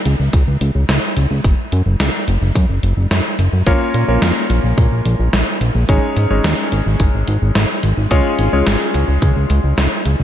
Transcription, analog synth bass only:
0.06 0.16 C#2 medium
0.20 0.30 C#2 medium
0.33 0.43 C#2 loud
0.47 0.57 C#2 medium
0.61 0.71 C#2 medium
0.75 0.85 C#2 medium
0.89 0.99 C#2 loud
1.17 1.27 C#2 medium
1.31 1.41 C#2 medium
1.44 1.54 F#1 loud
1.72 1.82 F#2 medium
1.86 1.96 F#1 medium
2.00 2.10 C#2 loud
2.28 2.38 F#1 medium
2.42 2.52 F#1 medium
2.56 2.66 F#2 loud
2.69 2.79 F#1 medium
2.83 2.93 F#1 medium
2.97 3.07 F#1 medium
3.11 3.21 F#2 loud
3.39 3.49 F#1 medium
3.53 3.63 F#2 medium
3.67 3.77 A#1 loud
3.94 4.04 A#2 medium
4.08 4.18 A#1 medium
4.22 4.32 F2 loud
4.50 4.60 A#1 medium
4.64 4.74 A#1 medium
4.78 4.88 A#1 loud
4.92 5.02 A#1 medium
5.06 5.16 A#1 medium
5.19 5.29 A#1 medium
5.33 5.43 A#1 loud
5.61 5.71 A#1 medium
5.75 5.85 A#1 medium
5.89 5.99 G#1 loud
6.17 6.27 G#2 medium
6.31 6.41 G#1 medium
6.44 6.54 D#2 loud
6.72 6.82 G#1 medium
6.86 6.96 G#1 medium
7.00 7.10 G#1 loud
7.14 7.24 G#1 medium
7.28 7.38 G#1 medium
7.42 7.52 G#1 medium
7.56 7.66 G#1 loud
7.83 7.93 G#1 medium
7.97 8.07 G#1 medium
8.11 8.21 C#2 loud
8.39 8.49 G#1 medium
8.53 8.63 C#2 medium
8.67 8.77 G#1 loud
8.94 9.04 C#2 medium
9.08 9.18 C#2 medium
9.22 9.32 C#2 loud
9.36 9.46 C#2 medium
9.50 9.60 C#2 medium
9.64 9.74 C#2 medium
9.78 9.88 C#2 loud
10.06 10.16 C#2 medium
10.20 10.23 C#2 medium

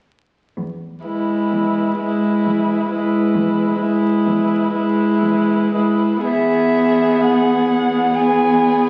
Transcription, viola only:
1.05 1.97 G#3 soft
1.99 2.88 G#3 soft
2.91 3.79 G#3 soft
3.81 4.72 G#3 soft
4.76 5.73 G#3 soft
5.74 6.25 G#3 soft
6.26 8.12 B3 soft
8.16 8.90 B3 soft

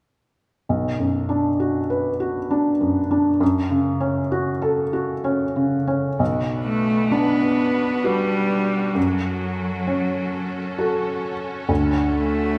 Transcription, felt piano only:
0.69 3.37 B1 soft
0.99 1.48 F#2 soft
1.29 1.78 D4 soft
1.60 2.09 F#4 soft
1.90 2.39 B4 soft
2.20 2.69 F#4 soft
2.51 2.99 D4 soft
2.81 3.29 F#2 soft
3.11 3.41 D4 soft
3.40 6.16 F#2 soft
3.70 4.19 C#3 soft
4.00 4.50 C#4 soft
4.32 4.81 F#4 soft
4.62 5.12 A4 soft
4.93 5.44 F#4 soft
5.24 5.76 C#4 soft
5.56 6.07 C#3 soft
5.87 6.19 C#4 soft
6.19 8.92 B1 soft
7.11 8.59 D4 soft
8.04 8.92 F#4 soft
8.04 8.92 B4 soft
8.95 11.65 F#2 soft
9.87 11.33 C#4 soft
10.78 11.66 F#4 soft
10.78 11.66 A4 soft
11.69 12.58 D2 soft

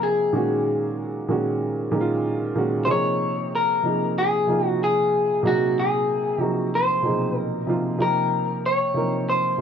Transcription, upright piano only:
0.00 0.34 C3 medium
0.00 0.35 F3 medium
0.00 0.34 A#3 medium
0.00 0.34 D#4 medium
0.00 0.34 F4 medium
0.00 0.20 G4 medium
0.33 1.14 A#2 medium
0.33 1.14 D#3 medium
0.33 1.15 G#3 medium
0.33 1.15 C#4 medium
0.33 1.16 F#4 medium
1.28 1.83 A#2 medium
1.28 1.83 D#3 medium
1.28 1.84 G#3 medium
1.28 1.84 C#4 medium
1.28 1.84 F#4 medium
1.91 2.46 A#2 medium
1.91 2.47 D#3 medium
1.91 2.47 G#3 medium
1.91 2.47 C#4 medium
1.91 2.01 D#4 medium
2.01 2.51 F4 medium
2.55 2.83 A#2 medium
2.55 2.83 D#3 medium
2.55 2.84 G#3 medium
2.55 2.84 C#4 medium
2.55 2.84 F#4 medium
2.87 3.69 C3 medium
2.87 3.69 F3 medium
2.87 3.70 A#3 medium
2.87 3.70 D#4 medium
2.87 3.70 G#4 medium
3.83 4.38 C3 medium
3.83 4.38 F3 medium
3.83 4.39 A#3 medium
3.83 4.39 D#4 medium
3.83 4.39 G#4 medium
4.47 5.29 C3 medium
4.47 5.29 F3 medium
4.47 5.29 A#3 medium
4.47 5.30 D#4 medium
4.47 5.30 F4 medium
5.43 5.51 A#2 medium
5.43 6.25 F#3 medium
5.43 6.25 A#3 medium
5.43 6.25 D#4 medium
5.43 6.26 G#4 medium
5.49 6.28 C3 medium
6.38 6.93 C3 medium
6.38 6.93 F3 medium
6.38 6.94 A#3 medium
6.38 6.94 D#4 medium
6.38 6.95 G#4 medium
7.03 7.10 B2 soft
7.03 7.57 F3 medium
7.03 7.58 A#3 medium
7.03 7.58 D#4 medium
7.03 7.59 G#4 medium
7.09 7.60 C3 medium
7.67 7.94 C3 medium
7.67 7.94 F3 medium
7.67 7.95 A#3 medium
7.67 7.95 D#4 medium
7.67 7.95 F4 medium
7.98 8.80 C3 medium
7.98 8.80 F3 medium
7.98 8.81 A#3 medium
7.98 8.81 D#4 medium
7.98 8.81 G4 medium
8.94 9.49 C3 medium
8.94 9.49 F3 medium
8.94 9.49 A#3 medium
8.94 9.50 D#4 medium
8.94 9.50 A#4 medium
9.58 9.61 C3 medium

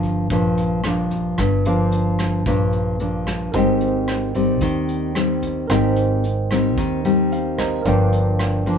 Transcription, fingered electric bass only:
0.00 0.30 G1 medium
0.30 1.34 A#1 medium
1.38 2.46 G1 medium
2.46 3.50 A#1 medium
3.54 4.62 G#1 medium
4.62 5.65 D#2 medium
5.70 6.78 G#1 loud
6.78 7.81 D#2 medium
7.85 8.78 G1 medium

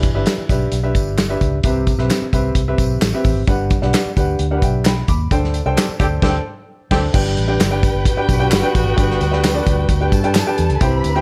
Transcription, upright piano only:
0.00 0.45 E3 medium
0.15 0.41 D4 medium
0.15 0.41 G4 medium
0.15 0.41 B4 medium
0.15 0.41 E5 medium
0.49 0.75 D4 medium
0.49 0.76 G4 medium
0.49 0.76 B4 medium
0.49 0.76 E5 medium
0.83 1.18 D4 medium
0.83 1.18 G4 medium
0.83 1.18 B4 medium
0.83 1.18 E5 medium
1.29 1.56 D4 medium
1.29 1.56 G4 medium
1.29 1.56 B4 medium
1.29 1.56 E5 medium
1.64 2.29 C3 medium
1.64 1.90 C4 medium
1.64 1.90 G4 medium
1.64 1.90 B4 medium
1.64 1.90 E5 medium
1.98 2.25 C4 medium
1.98 2.25 G4 medium
1.98 2.25 B4 medium
1.98 2.25 E5 medium
2.33 2.59 C4 medium
2.33 2.59 G4 medium
2.33 2.59 B4 medium
2.33 2.59 E5 medium
2.68 3.02 C4 medium
2.68 3.02 G4 medium
2.68 3.02 B4 medium
2.68 3.02 E5 medium
3.14 3.40 C4 medium
3.14 3.39 G4 medium
3.14 3.40 B4 medium
3.14 3.40 E5 medium
3.48 4.12 G2 medium
3.48 3.74 D4 medium
3.48 3.74 G4 medium
3.48 3.74 B4 medium
3.48 3.74 F#5 medium
3.82 4.08 D4 medium
3.82 4.08 G4 medium
3.82 4.08 B4 medium
3.82 4.08 F#5 medium
4.17 4.43 D4 medium
4.17 4.43 G4 medium
4.17 4.43 B4 medium
4.17 4.43 F#5 medium
4.51 4.86 D4 medium
4.51 4.86 G4 medium
4.51 4.56 A#4 medium
4.51 4.62 F#5 medium
4.57 4.89 B4 medium
4.63 4.84 E5 medium
4.63 4.84 G5 medium
4.86 5.08 G5 medium
4.86 5.07 B5 medium
5.09 5.52 B5 medium
5.09 5.52 D6 medium
5.31 5.96 D3 medium
5.31 5.57 D4 medium
5.31 5.57 A4 medium
5.31 5.57 C5 medium
5.31 5.57 G5 medium
5.66 5.92 D4 medium
5.66 5.92 A4 medium
5.66 5.92 C5 medium
5.66 5.92 G5 loud
6.00 6.21 D4 medium
6.00 6.21 A4 medium
6.00 6.21 C5 medium
6.00 6.23 G5 medium
6.22 6.38 D4 loud
6.22 6.38 A4 loud
6.22 6.38 C5 loud
6.29 6.42 G5 loud
6.91 7.07 D4 loud
6.91 7.07 A4 medium
6.91 7.07 C5 medium
6.91 7.07 G5 loud
7.14 7.79 G2 medium
7.14 7.40 D4 medium
7.14 7.40 G4 medium
7.14 7.40 B4 medium
7.14 7.40 G5 medium
7.48 7.66 D4 medium
7.48 7.66 G4 medium
7.48 7.66 B4 medium
7.48 7.66 G5 medium
7.71 8.06 D4 medium
7.71 8.06 G4 medium
7.71 8.06 B4 medium
7.71 8.06 G5 medium
8.17 8.35 D4 medium
8.17 8.35 G4 medium
8.17 8.35 B4 medium
8.17 8.35 G5 medium
8.39 8.57 D4 medium
8.39 8.57 G4 medium
8.39 8.57 B4 medium
8.39 8.57 G5 loud
8.62 8.89 D4 medium
8.62 8.89 G4 medium
8.62 8.89 B4 medium
8.62 8.89 G5 loud
8.96 9.62 G2 medium
8.96 9.23 D4 medium
8.96 9.23 G4 medium
8.96 9.23 B4 medium
8.96 9.23 G5 medium
9.31 9.49 D4 medium
9.31 9.49 G4 medium
9.31 9.49 B4 medium
9.31 9.49 G5 medium
9.54 9.90 G3 medium
9.54 9.90 D4 medium
9.54 9.60 A4 medium
9.54 9.90 D5 loud
9.60 9.92 B4 medium
10.01 10.18 D4 medium
10.01 10.18 G4 medium
10.01 10.18 B4 medium
10.01 10.19 G5 loud
10.24 10.41 D4 medium
10.24 10.41 G4 medium
10.24 10.41 B4 medium
10.24 10.41 G5 loud
10.47 10.73 D4 medium
10.47 10.73 G4 medium
10.47 10.73 B4 medium
10.47 10.73 G5 loud
10.81 11.21 C3 medium
10.81 11.07 E4 medium
10.81 11.07 G4 medium
10.81 11.07 C5 medium
10.81 11.07 G5 loud
11.15 11.21 E4 medium
11.15 11.21 G4 medium
11.15 11.21 C5 medium
11.15 11.21 G5 loud

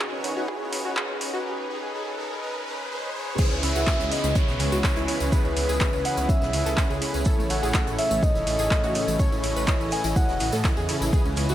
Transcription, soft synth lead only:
3.63 4.13 E5 loud
4.12 4.37 D#5 loud
4.36 5.34 C#5 loud
5.32 6.07 B4 loud
6.05 6.29 F#5 loud
6.29 6.98 E5 loud
7.50 7.95 F#5 loud
7.98 8.24 E5 medium
8.23 9.19 D#5 loud
9.20 9.94 C#5 loud
9.92 10.16 G#5 loud
10.16 10.85 F#5 loud

